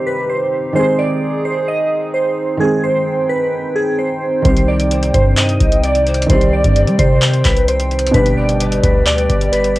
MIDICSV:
0, 0, Header, 1, 7, 480
1, 0, Start_track
1, 0, Key_signature, -3, "minor"
1, 0, Tempo, 461538
1, 788, Time_signature, 4, 2, 24, 8
1, 10183, End_track
2, 0, Start_track
2, 0, Title_t, "Pan flute"
2, 0, Program_c, 0, 75
2, 5109, Note_on_c, 0, 72, 92
2, 6027, Note_off_c, 0, 72, 0
2, 6069, Note_on_c, 0, 74, 80
2, 6297, Note_off_c, 0, 74, 0
2, 6309, Note_on_c, 0, 72, 80
2, 6537, Note_off_c, 0, 72, 0
2, 6549, Note_on_c, 0, 74, 121
2, 7467, Note_off_c, 0, 74, 0
2, 7509, Note_on_c, 0, 72, 87
2, 7960, Note_off_c, 0, 72, 0
2, 8948, Note_on_c, 0, 71, 98
2, 9866, Note_off_c, 0, 71, 0
2, 9909, Note_on_c, 0, 74, 75
2, 10137, Note_off_c, 0, 74, 0
2, 10148, Note_on_c, 0, 72, 90
2, 10183, Note_off_c, 0, 72, 0
2, 10183, End_track
3, 0, Start_track
3, 0, Title_t, "Synth keys"
3, 0, Program_c, 1, 88
3, 68, Note_on_c, 1, 71, 82
3, 294, Note_off_c, 1, 71, 0
3, 307, Note_on_c, 1, 72, 74
3, 759, Note_off_c, 1, 72, 0
3, 787, Note_on_c, 1, 72, 108
3, 1013, Note_off_c, 1, 72, 0
3, 1027, Note_on_c, 1, 74, 88
3, 1479, Note_off_c, 1, 74, 0
3, 1508, Note_on_c, 1, 72, 81
3, 1734, Note_off_c, 1, 72, 0
3, 1748, Note_on_c, 1, 75, 90
3, 2199, Note_off_c, 1, 75, 0
3, 2224, Note_on_c, 1, 72, 83
3, 2677, Note_off_c, 1, 72, 0
3, 2708, Note_on_c, 1, 68, 92
3, 2934, Note_off_c, 1, 68, 0
3, 2949, Note_on_c, 1, 72, 85
3, 3400, Note_off_c, 1, 72, 0
3, 3425, Note_on_c, 1, 71, 89
3, 3878, Note_off_c, 1, 71, 0
3, 3906, Note_on_c, 1, 68, 92
3, 4133, Note_off_c, 1, 68, 0
3, 4145, Note_on_c, 1, 72, 76
3, 4598, Note_off_c, 1, 72, 0
3, 4627, Note_on_c, 1, 72, 98
3, 4854, Note_off_c, 1, 72, 0
3, 4868, Note_on_c, 1, 74, 82
3, 5319, Note_off_c, 1, 74, 0
3, 5348, Note_on_c, 1, 72, 81
3, 5574, Note_off_c, 1, 72, 0
3, 5589, Note_on_c, 1, 75, 89
3, 6040, Note_off_c, 1, 75, 0
3, 6069, Note_on_c, 1, 74, 83
3, 6520, Note_off_c, 1, 74, 0
3, 6549, Note_on_c, 1, 72, 92
3, 6774, Note_off_c, 1, 72, 0
3, 6792, Note_on_c, 1, 74, 80
3, 7242, Note_off_c, 1, 74, 0
3, 7268, Note_on_c, 1, 72, 91
3, 7719, Note_off_c, 1, 72, 0
3, 7751, Note_on_c, 1, 71, 83
3, 7975, Note_off_c, 1, 71, 0
3, 7990, Note_on_c, 1, 72, 83
3, 8440, Note_off_c, 1, 72, 0
3, 8467, Note_on_c, 1, 71, 107
3, 8693, Note_off_c, 1, 71, 0
3, 8708, Note_on_c, 1, 74, 81
3, 9159, Note_off_c, 1, 74, 0
3, 9187, Note_on_c, 1, 71, 77
3, 9413, Note_off_c, 1, 71, 0
3, 9428, Note_on_c, 1, 74, 89
3, 9879, Note_off_c, 1, 74, 0
3, 9905, Note_on_c, 1, 71, 91
3, 10183, Note_off_c, 1, 71, 0
3, 10183, End_track
4, 0, Start_track
4, 0, Title_t, "Analog synth pad"
4, 0, Program_c, 2, 89
4, 0, Note_on_c, 2, 48, 78
4, 0, Note_on_c, 2, 60, 73
4, 0, Note_on_c, 2, 63, 70
4, 0, Note_on_c, 2, 67, 88
4, 750, Note_off_c, 2, 48, 0
4, 750, Note_off_c, 2, 67, 0
4, 789, Note_on_c, 2, 68, 89
4, 2689, Note_off_c, 2, 68, 0
4, 2708, Note_on_c, 2, 79, 86
4, 4629, Note_on_c, 2, 48, 79
4, 8426, Note_off_c, 2, 60, 0
4, 8426, Note_off_c, 2, 63, 0
4, 8430, Note_off_c, 2, 48, 0
4, 8468, Note_on_c, 2, 55, 81
4, 8468, Note_on_c, 2, 67, 73
4, 8469, Note_on_c, 2, 74, 90
4, 10183, Note_off_c, 2, 55, 0
4, 10183, Note_off_c, 2, 67, 0
4, 10183, Note_off_c, 2, 74, 0
4, 10183, Note_off_c, 2, 79, 0
4, 10183, End_track
5, 0, Start_track
5, 0, Title_t, "Felt piano"
5, 0, Program_c, 3, 0
5, 0, Control_c, 3, 64, 127
5, 0, Note_on_c, 3, 51, 66
5, 0, Note_on_c, 3, 55, 61
5, 0, Note_on_c, 3, 60, 65
5, 0, Note_on_c, 3, 67, 81
5, 735, Note_off_c, 3, 51, 0
5, 747, Note_off_c, 3, 55, 0
5, 758, Note_off_c, 3, 60, 0
5, 758, Note_on_c, 3, 51, 70
5, 769, Note_off_c, 3, 67, 0
5, 780, Note_on_c, 3, 56, 67
5, 801, Control_c, 3, 64, 0
5, 802, Note_on_c, 3, 60, 67
5, 823, Note_on_c, 3, 68, 76
5, 999, Control_c, 3, 64, 127
5, 2654, Note_off_c, 3, 51, 0
5, 2666, Note_off_c, 3, 56, 0
5, 2675, Note_on_c, 3, 51, 70
5, 2677, Note_off_c, 3, 60, 0
5, 2688, Note_off_c, 3, 68, 0
5, 2697, Note_on_c, 3, 56, 64
5, 2719, Note_on_c, 3, 60, 60
5, 2741, Note_on_c, 3, 68, 63
5, 4573, Note_off_c, 3, 51, 0
5, 4584, Note_off_c, 3, 56, 0
5, 4595, Note_off_c, 3, 60, 0
5, 4598, Note_on_c, 3, 51, 70
5, 4606, Note_off_c, 3, 68, 0
5, 4620, Note_on_c, 3, 55, 60
5, 4642, Note_on_c, 3, 60, 65
5, 4643, Control_c, 3, 64, 0
5, 4664, Note_on_c, 3, 67, 72
5, 4831, Control_c, 3, 64, 127
5, 6495, Note_off_c, 3, 51, 0
5, 6506, Note_off_c, 3, 55, 0
5, 6513, Note_on_c, 3, 51, 72
5, 6517, Note_off_c, 3, 60, 0
5, 6528, Note_off_c, 3, 67, 0
5, 6535, Note_on_c, 3, 55, 65
5, 6557, Note_on_c, 3, 60, 65
5, 6579, Note_on_c, 3, 67, 76
5, 8412, Note_off_c, 3, 51, 0
5, 8423, Note_off_c, 3, 55, 0
5, 8434, Note_off_c, 3, 60, 0
5, 8436, Note_on_c, 3, 47, 65
5, 8446, Note_off_c, 3, 67, 0
5, 8458, Note_on_c, 3, 55, 67
5, 8480, Note_on_c, 3, 62, 65
5, 8482, Control_c, 3, 64, 0
5, 8502, Note_on_c, 3, 67, 75
5, 8680, Control_c, 3, 64, 127
5, 10183, Note_off_c, 3, 47, 0
5, 10183, Note_off_c, 3, 55, 0
5, 10183, Note_off_c, 3, 62, 0
5, 10183, Note_off_c, 3, 67, 0
5, 10183, End_track
6, 0, Start_track
6, 0, Title_t, "808-style bass"
6, 0, Program_c, 4, 38
6, 4628, Note_on_c, 4, 36, 113
6, 5320, Note_off_c, 4, 36, 0
6, 5348, Note_on_c, 4, 43, 107
6, 5809, Note_off_c, 4, 43, 0
6, 5828, Note_on_c, 4, 36, 107
6, 6519, Note_off_c, 4, 36, 0
6, 6548, Note_on_c, 4, 36, 115
6, 6894, Note_off_c, 4, 36, 0
6, 6908, Note_on_c, 4, 43, 106
6, 7149, Note_on_c, 4, 55, 100
6, 7164, Note_off_c, 4, 43, 0
6, 7262, Note_off_c, 4, 55, 0
6, 7268, Note_on_c, 4, 48, 107
6, 7729, Note_off_c, 4, 48, 0
6, 7748, Note_on_c, 4, 36, 102
6, 8439, Note_off_c, 4, 36, 0
6, 8468, Note_on_c, 4, 31, 116
6, 9159, Note_off_c, 4, 31, 0
6, 9188, Note_on_c, 4, 38, 104
6, 9649, Note_off_c, 4, 38, 0
6, 9668, Note_on_c, 4, 31, 105
6, 10183, Note_off_c, 4, 31, 0
6, 10183, End_track
7, 0, Start_track
7, 0, Title_t, "Drums"
7, 4628, Note_on_c, 9, 36, 118
7, 4628, Note_on_c, 9, 42, 77
7, 4732, Note_off_c, 9, 36, 0
7, 4732, Note_off_c, 9, 42, 0
7, 4748, Note_on_c, 9, 42, 65
7, 4852, Note_off_c, 9, 42, 0
7, 4988, Note_on_c, 9, 42, 68
7, 5092, Note_off_c, 9, 42, 0
7, 5108, Note_on_c, 9, 42, 76
7, 5212, Note_off_c, 9, 42, 0
7, 5228, Note_on_c, 9, 42, 60
7, 5332, Note_off_c, 9, 42, 0
7, 5348, Note_on_c, 9, 36, 96
7, 5348, Note_on_c, 9, 42, 84
7, 5452, Note_off_c, 9, 36, 0
7, 5452, Note_off_c, 9, 42, 0
7, 5588, Note_on_c, 9, 39, 119
7, 5588, Note_on_c, 9, 42, 88
7, 5692, Note_off_c, 9, 39, 0
7, 5692, Note_off_c, 9, 42, 0
7, 5709, Note_on_c, 9, 42, 62
7, 5813, Note_off_c, 9, 42, 0
7, 5828, Note_on_c, 9, 36, 102
7, 5828, Note_on_c, 9, 42, 84
7, 5932, Note_off_c, 9, 36, 0
7, 5932, Note_off_c, 9, 42, 0
7, 5948, Note_on_c, 9, 42, 68
7, 6052, Note_off_c, 9, 42, 0
7, 6068, Note_on_c, 9, 42, 72
7, 6172, Note_off_c, 9, 42, 0
7, 6188, Note_on_c, 9, 42, 61
7, 6292, Note_off_c, 9, 42, 0
7, 6309, Note_on_c, 9, 42, 48
7, 6388, Note_off_c, 9, 42, 0
7, 6388, Note_on_c, 9, 42, 63
7, 6468, Note_off_c, 9, 42, 0
7, 6468, Note_on_c, 9, 42, 83
7, 6548, Note_off_c, 9, 42, 0
7, 6548, Note_on_c, 9, 36, 118
7, 6548, Note_on_c, 9, 42, 79
7, 6652, Note_off_c, 9, 36, 0
7, 6652, Note_off_c, 9, 42, 0
7, 6668, Note_on_c, 9, 42, 66
7, 6772, Note_off_c, 9, 42, 0
7, 6907, Note_on_c, 9, 36, 98
7, 6908, Note_on_c, 9, 42, 69
7, 7011, Note_off_c, 9, 36, 0
7, 7012, Note_off_c, 9, 42, 0
7, 7028, Note_on_c, 9, 42, 71
7, 7132, Note_off_c, 9, 42, 0
7, 7148, Note_on_c, 9, 42, 61
7, 7252, Note_off_c, 9, 42, 0
7, 7268, Note_on_c, 9, 36, 94
7, 7268, Note_on_c, 9, 42, 79
7, 7372, Note_off_c, 9, 36, 0
7, 7372, Note_off_c, 9, 42, 0
7, 7508, Note_on_c, 9, 39, 119
7, 7508, Note_on_c, 9, 42, 90
7, 7612, Note_off_c, 9, 39, 0
7, 7612, Note_off_c, 9, 42, 0
7, 7628, Note_on_c, 9, 42, 61
7, 7732, Note_off_c, 9, 42, 0
7, 7748, Note_on_c, 9, 36, 100
7, 7748, Note_on_c, 9, 39, 92
7, 7748, Note_on_c, 9, 42, 83
7, 7852, Note_off_c, 9, 36, 0
7, 7852, Note_off_c, 9, 39, 0
7, 7852, Note_off_c, 9, 42, 0
7, 7868, Note_on_c, 9, 42, 68
7, 7972, Note_off_c, 9, 42, 0
7, 7988, Note_on_c, 9, 42, 71
7, 8092, Note_off_c, 9, 42, 0
7, 8108, Note_on_c, 9, 42, 60
7, 8212, Note_off_c, 9, 42, 0
7, 8228, Note_on_c, 9, 42, 48
7, 8308, Note_off_c, 9, 42, 0
7, 8308, Note_on_c, 9, 42, 63
7, 8388, Note_off_c, 9, 42, 0
7, 8388, Note_on_c, 9, 42, 83
7, 8468, Note_off_c, 9, 42, 0
7, 8468, Note_on_c, 9, 36, 122
7, 8468, Note_on_c, 9, 42, 77
7, 8572, Note_off_c, 9, 36, 0
7, 8572, Note_off_c, 9, 42, 0
7, 8588, Note_on_c, 9, 42, 64
7, 8692, Note_off_c, 9, 42, 0
7, 8829, Note_on_c, 9, 42, 66
7, 8933, Note_off_c, 9, 42, 0
7, 8949, Note_on_c, 9, 42, 73
7, 9053, Note_off_c, 9, 42, 0
7, 9069, Note_on_c, 9, 42, 59
7, 9173, Note_off_c, 9, 42, 0
7, 9188, Note_on_c, 9, 36, 95
7, 9189, Note_on_c, 9, 42, 80
7, 9292, Note_off_c, 9, 36, 0
7, 9293, Note_off_c, 9, 42, 0
7, 9429, Note_on_c, 9, 39, 118
7, 9429, Note_on_c, 9, 42, 89
7, 9533, Note_off_c, 9, 39, 0
7, 9533, Note_off_c, 9, 42, 0
7, 9549, Note_on_c, 9, 42, 62
7, 9653, Note_off_c, 9, 42, 0
7, 9668, Note_on_c, 9, 36, 100
7, 9669, Note_on_c, 9, 42, 82
7, 9772, Note_off_c, 9, 36, 0
7, 9773, Note_off_c, 9, 42, 0
7, 9789, Note_on_c, 9, 42, 70
7, 9893, Note_off_c, 9, 42, 0
7, 9909, Note_on_c, 9, 42, 70
7, 10013, Note_off_c, 9, 42, 0
7, 10029, Note_on_c, 9, 42, 61
7, 10133, Note_off_c, 9, 42, 0
7, 10149, Note_on_c, 9, 42, 47
7, 10183, Note_off_c, 9, 42, 0
7, 10183, End_track
0, 0, End_of_file